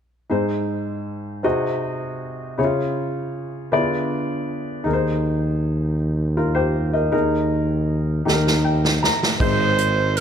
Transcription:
0.30 1.40 G#2 soft
0.30 1.42 D#4 soft
0.30 1.43 G#4 soft
0.30 1.45 C5 medium
1.43 2.54 C3 soft
1.43 2.58 C4 soft
1.43 2.58 D#4 soft
1.43 2.58 F#4 soft
1.43 2.57 G#4 soft
1.43 2.58 D#5 medium
2.58 3.68 C#3 soft
2.58 2.64 E4 soft
2.58 3.70 G#4 soft
2.58 3.72 C#5 soft
2.64 3.75 F4 medium
3.72 4.82 D3 soft
3.72 4.86 B3 soft
3.72 4.86 D4 soft
3.72 3.79 E4 soft
3.72 4.84 G#4 soft
3.72 4.86 D5 medium
3.79 4.89 F4 soft
4.84 7.09 D#2 medium
4.84 5.95 D#3 soft
4.84 7.08 D#4 medium
4.84 6.34 G#4 soft
4.84 4.93 A#4 soft
4.93 6.38 C5 medium
6.37 6.55 F4 soft
6.37 6.55 A#4 soft
6.55 6.92 G4 soft
6.55 6.91 C5 soft
6.93 7.11 A#4 soft
6.93 7.30 D#5 soft
7.12 8.23 D#2 medium
7.12 8.22 D#3 medium
7.12 8.24 D#4 medium
7.12 8.26 G#4 soft
7.12 8.26 A#4 medium
8.25 9.09 D#2 medium
8.25 9.36 D#3 medium
8.25 9.38 D#4 medium
8.25 9.40 G4 soft
8.25 8.33 A4 soft
8.25 snare soft
8.33 9.43 A#4 medium
8.47 snare soft
8.65 9.00 G5 soft
8.85 snare medium
9.03 9.38 A#5 medium
9.03 snare medium
9.23 snare medium
9.40 10.20 G#1 medium
9.40 10.20 G#2 soft
9.40 10.14 D#4 medium
9.40 10.15 G#4 medium
9.40 10.18 C5 medium
9.40 10.15 C5 medium
9.40 kick medium
9.40 crash medium
9.78 closed hi-hat soft
10.17 10.20 A#4 medium
10.17 closed hi-hat soft

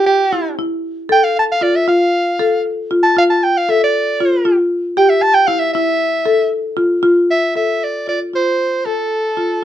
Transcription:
0.00 0.21 G4 medium
0.06 0.54 G4 medium
0.33 0.53 E4 medium
0.59 0.99 E4 medium
1.09 1.50 A4 medium
1.09 1.25 G5 loud
1.24 1.36 F5 medium
1.39 1.44 A5 loud
1.52 1.64 F5 medium
1.61 1.82 F4 medium
1.61 1.77 D5 medium
1.76 1.87 E5 loud
1.88 2.28 F4 medium
1.88 2.61 F5 medium
2.39 2.80 A4 medium
2.91 3.11 F4 medium
3.03 3.15 A5 loud
3.17 3.57 F4 medium
3.17 3.23 F5 loud
3.30 3.45 A5 loud
3.43 3.59 G5 medium
3.57 3.72 F5 medium
3.69 4.09 A4 medium
3.69 3.82 E5 loud
3.83 4.56 D5 medium
4.20 4.40 F4 medium
4.45 4.86 F4 medium
4.97 5.38 G4 medium
4.97 5.11 G5 loud
5.09 5.23 E5 medium
5.22 5.35 A5 loud
5.34 5.48 G5 loud
5.47 5.69 E4 medium
5.47 5.61 F5 medium
5.59 5.72 E5 loud
5.73 6.15 E4 medium
5.73 6.47 E5 medium
6.26 6.67 A4 medium
6.77 6.98 F4 medium
7.03 7.44 F4 medium
7.30 7.54 E5 loud
7.56 7.96 A4 medium
7.56 7.85 E5 medium
7.84 8.08 D5 medium
8.07 8.28 F4 medium
8.07 8.20 D5 medium
8.33 8.74 F4 medium
8.33 8.87 C5 medium
8.85 9.64 A4 medium
8.85 9.26 A4 medium
9.37 9.57 F4 medium

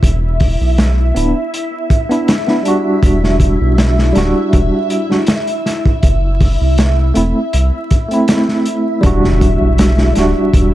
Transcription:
0.00 0.57 E1 loud
0.00 9.02 E5 medium
0.00 kick loud
0.00 closed hi-hat medium
0.40 kick medium
0.40 open hi-hat medium
0.61 1.12 B1 medium
0.78 snare loud
0.78 closed hi-hat medium
1.15 1.33 D1 medium
1.15 1.38 B3 medium
1.15 1.39 D4 medium
1.15 1.39 E4 medium
1.15 closed hi-hat medium
1.54 closed hi-hat medium
1.90 kick loud
1.90 closed hi-hat medium
2.09 2.31 B3 medium
2.09 2.31 D4 medium
2.09 2.32 E4 medium
2.09 closed hi-hat soft
2.28 snare loud
2.28 closed hi-hat medium
2.47 2.61 B3 medium
2.47 2.61 D4 medium
2.47 2.62 E4 medium
2.47 snare soft
2.63 4.10 G3 medium
2.63 4.11 D4 medium
2.63 closed hi-hat medium
2.68 4.12 F#4 loud
3.03 3.57 E1 loud
3.03 kick medium
3.03 closed hi-hat medium
3.24 snare soft
3.40 kick medium
3.40 closed hi-hat medium
3.61 4.12 B1 medium
3.78 snare loud
3.78 closed hi-hat medium
3.99 snare soft
4.13 4.33 D1 medium
4.13 5.04 G3 medium
4.13 5.06 D4 medium
4.13 snare soft
4.13 closed hi-hat medium
4.18 5.07 F#4 medium
4.53 4.71 E1 loud
4.53 kick loud
4.53 closed hi-hat medium
4.90 closed hi-hat medium
5.09 5.23 G3 medium
5.09 5.23 D4 medium
5.09 5.24 F#4 medium
5.09 snare soft
5.27 snare loud
5.27 closed hi-hat medium
5.47 closed hi-hat soft
5.66 snare soft
5.66 closed hi-hat medium
5.85 kick medium
6.03 6.57 F#1 medium
6.03 kick loud
6.03 closed hi-hat medium
6.40 kick medium
6.40 open hi-hat medium
6.61 7.12 C2 medium
6.78 snare loud
6.78 closed hi-hat medium
7.14 7.33 E1 medium
7.14 7.38 A3 medium
7.14 7.38 C4 medium
7.14 7.39 E4 medium
7.14 closed hi-hat medium
7.53 7.71 C2 medium
7.53 closed hi-hat medium
7.91 kick medium
7.91 closed hi-hat medium
8.08 9.00 A3 medium
8.08 9.01 C4 medium
8.08 closed hi-hat soft
8.14 9.02 E4 loud
8.28 snare loud
8.28 closed hi-hat medium
8.49 snare soft
8.66 closed hi-hat medium
9.01 9.57 E1 loud
9.01 10.07 G3 loud
9.01 10.09 D4 medium
9.01 10.74 E5 medium
9.01 kick loud
9.01 closed hi-hat medium
9.01 impact medium
9.06 10.10 F#4 loud
9.24 snare soft
9.41 kick medium
9.41 closed hi-hat medium
9.61 10.12 B1 medium
9.78 snare loud
9.78 closed hi-hat medium
9.98 snare medium
10.13 10.34 D1 medium
10.13 10.74 G3 medium
10.13 10.74 D4 medium
10.13 snare soft
10.13 closed hi-hat medium
10.18 10.74 F#4 loud
10.54 10.71 E1 loud
10.54 kick loud
10.54 closed hi-hat medium

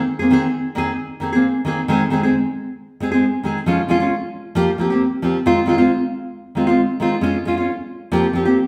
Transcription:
0.19 0.30 A#3 soft
0.19 0.31 C4 soft
0.19 0.30 G#4 medium
0.30 0.45 D#3 medium
0.30 0.45 A#3 medium
0.30 0.46 C4 medium
0.30 0.46 G#4 medium
0.75 0.90 D#3 medium
0.75 0.90 A#3 medium
0.75 0.91 C4 medium
0.75 0.91 G#4 medium
1.20 1.32 D#3 medium
1.20 1.33 A#3 medium
1.20 1.33 C4 medium
1.20 1.31 G#4 medium
1.33 1.47 A#3 soft
1.33 1.46 C4 medium
1.33 1.45 G#4 medium
1.65 1.79 D#3 medium
1.65 1.80 A#3 medium
1.65 1.80 C4 medium
1.65 1.80 G#4 medium
1.88 2.02 D#3 medium
1.88 2.02 G#3 medium
1.88 2.03 C4 medium
1.88 2.03 G#4 medium
2.10 2.22 D#3 medium
2.10 2.22 G#3 medium
2.10 2.23 C4 medium
2.10 2.22 G#4 medium
2.23 2.37 G#3 soft
2.23 2.36 C4 soft
2.23 2.35 G#4 medium
3.00 3.12 G#3 medium
3.00 3.12 C4 medium
3.00 3.10 G#4 medium
3.00 muted nylon-string guitar stroke medium
3.12 3.25 G#3 soft
3.12 3.25 C4 medium
3.12 3.24 G#4 medium
3.43 3.57 D#3 soft
3.43 3.58 G#3 medium
3.43 3.58 C4 medium
3.43 3.59 G#4 medium
3.66 3.80 F3 medium
3.66 3.80 G#3 medium
3.66 3.81 C#4 medium
3.66 3.81 F4 medium
3.88 4.00 F3 medium
3.88 4.01 G#3 medium
3.88 4.01 C#4 medium
3.88 3.99 F4 medium
4.00 4.14 G#3 soft
4.00 4.13 C#4 soft
4.00 4.13 F4 medium
4.55 4.69 F3 medium
4.55 4.70 A#3 medium
4.55 4.70 G4 medium
4.55 muted nylon-string guitar stroke medium
4.78 4.90 F3 medium
4.78 4.90 A#3 medium
4.78 4.90 C4 medium
4.78 4.89 G4 medium
4.90 5.04 A#3 soft
4.90 5.03 C4 soft
4.90 5.02 G4 medium
5.22 5.36 F3 medium
5.22 5.36 A#3 medium
5.22 5.37 C4 medium
5.22 5.37 G4 medium
5.46 5.59 D#3 medium
5.46 5.59 G#3 medium
5.46 5.59 C4 medium
5.46 5.59 F4 medium
5.66 5.78 D#3 medium
5.66 5.79 G#3 medium
5.66 5.78 C4 medium
5.66 5.77 F4 medium
5.78 5.92 G#3 soft
5.78 5.91 C4 soft
5.78 5.91 F4 medium
6.55 6.67 D#3 medium
6.55 6.68 G#3 medium
6.55 6.68 C4 medium
6.55 6.66 F4 medium
6.67 6.81 G#3 soft
6.67 6.81 C4 medium
6.67 6.80 F4 medium
7.00 7.14 D#3 medium
7.00 7.14 G#3 medium
7.00 7.15 C4 medium
7.00 7.15 F4 medium
7.21 7.36 G#3 medium
7.21 7.36 C#4 medium
7.21 7.37 F4 medium
7.45 7.57 G#3 medium
7.45 7.58 C#4 medium
7.45 7.56 F4 medium
7.57 7.71 C#4 soft
7.57 7.70 F4 medium
8.12 8.26 F3 medium
8.12 8.26 A#3 medium
8.12 8.26 C4 medium
8.12 8.26 G4 medium
8.33 8.46 F3 soft
8.33 8.47 A#3 medium
8.33 8.46 C4 medium
8.33 8.44 G4 soft
8.45 8.60 A#3 soft
8.45 8.59 C4 soft
8.45 8.58 G4 medium

